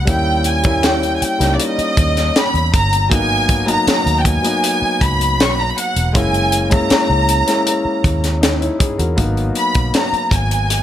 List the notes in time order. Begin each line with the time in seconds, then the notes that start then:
Already playing: D#4
0.05 D#2 G3 A#3 C#4 E4, kick, closed hi-hat
0.10 G5
0.44 G#5, closed hi-hat
0.63 G3 A#3 C#4 E4, kick, closed hi-hat
0.83 G5, snare, closed hi-hat
1.03 closed hi-hat
1.16 G#5
1.22 G5, muted fingered electric bass stroke, closed hi-hat
1.39 C#2 G3 A#3 C#4 D#4, snare, closed hi-hat
1.53 D5
1.60 D#5, closed hi-hat
1.78 muted fingered electric bass stroke, closed hi-hat
1.97 D#2, kick, closed hi-hat
2.17 snare, closed hi-hat
2.36 B5, snare, closed hi-hat
2.54 E2, closed hi-hat
2.74 G1 A#5, kick, closed hi-hat
2.93 closed hi-hat
3.09 G#1 F#3 A#3 B3 D#4 G#5, kick, closed hi-hat
3.49 kick, closed hi-hat
3.66 F#3 A#3 B3 D#4 A#5, closed hi-hat
3.87 muted fingered electric bass stroke, snare, closed hi-hat
4.06 D#2, closed hi-hat
4.20 G5
4.25 G#5, kick, closed hi-hat
4.43 F#3 A#3 B3 D#4, closed hi-hat
4.64 closed hi-hat
4.82 muted fingered electric bass stroke
5.01 C#2 B5, kick, closed hi-hat
5.21 closed hi-hat
5.39 B1 C#6, snare, closed hi-hat
5.51 B5
5.60 A#5
5.69 B5
5.78 F#5, closed hi-hat
5.96 E1, closed hi-hat
6.13 F#1 G#3 A#3 C#4 E4 G#5, kick, closed hi-hat
6.34 closed hi-hat
6.52 closed hi-hat
6.69 G#3 A#3 C#4 E4 A#5, kick, closed hi-hat
6.90 muted fingered electric bass stroke, snare, closed hi-hat
7.10 C#2
7.29 closed hi-hat
7.45 G#3 A#3 C#4 E4, snare, closed hi-hat
7.67 closed hi-hat
7.85 muted fingered electric bass stroke
8.04 D#2, kick, closed hi-hat
8.24 snare, closed hi-hat
8.41 D#4, snare, closed hi-hat
8.60 C#4 E4, closed hi-hat
8.79 E4 G#4, muted fingered electric bass stroke, kick, closed hi-hat
8.98 E2 F#4 A#4, closed hi-hat
9.16 G#1 F#3 A#3 B3 D#4, kick, closed hi-hat
9.37 closed hi-hat
9.55 B5, closed hi-hat
9.75 B1, kick, closed hi-hat
9.94 A#5, snare, closed hi-hat
10.13 muted fingered electric bass stroke, closed hi-hat
10.31 G#1 G#5, kick, closed hi-hat
10.51 closed hi-hat
10.70 closed hi-hat